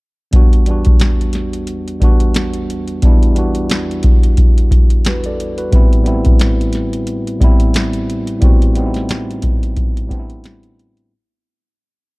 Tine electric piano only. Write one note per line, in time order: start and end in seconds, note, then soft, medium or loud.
0.31 0.58 E2 medium
0.31 0.59 G3 medium
0.31 0.59 B3 medium
0.31 0.60 D4 medium
0.36 0.60 F#4 medium
0.66 1.65 E2 medium
0.66 1.65 G3 medium
0.66 1.66 B3 medium
0.66 1.66 D4 medium
0.71 1.67 F#4 medium
1.99 2.75 E2 medium
1.99 2.75 G3 medium
1.99 2.76 B3 medium
1.99 2.76 D4 medium
2.04 2.77 F#4 medium
3.01 3.28 E2 medium
3.01 3.29 G3 medium
3.01 3.29 B3 medium
3.01 3.30 D4 medium
3.06 3.30 E4 medium
3.34 4.33 E2 medium
3.34 4.34 G3 medium
3.34 4.34 B3 medium
3.34 4.35 D4 medium
3.38 4.36 F#4 medium
5.07 5.25 F#4 medium
5.07 5.25 B4 medium
5.26 5.57 A4 medium
5.26 5.57 D5 medium
5.58 5.90 F#4 medium
5.58 5.90 B4 medium
5.70 5.97 A2 medium
5.70 5.98 G3 medium
5.70 5.98 B3 medium
5.70 5.99 C4 medium
5.75 6.00 E4 medium
6.03 7.03 A2 medium
6.03 7.03 G3 medium
6.03 7.04 B3 medium
6.03 7.04 C4 medium
6.08 7.05 E4 medium
7.39 8.14 A2 medium
7.39 8.15 G3 medium
7.39 8.15 B3 medium
7.39 8.16 C4 medium
7.44 8.17 E4 medium
8.39 8.67 A2 medium
8.39 8.67 G3 medium
8.39 8.68 B3 medium
8.39 8.68 C4 medium
8.44 8.69 F#4 medium
8.74 9.73 A2 medium
8.74 9.74 G3 medium
8.74 9.74 B3 medium
8.74 9.75 C4 medium
8.79 8.85 D#4 medium
8.86 9.79 E4 medium
10.08 10.83 A2 medium
10.08 10.84 G3 medium
10.08 10.85 B3 medium
10.08 10.85 C4 medium
10.13 10.19 D4 medium
10.19 10.89 E4 medium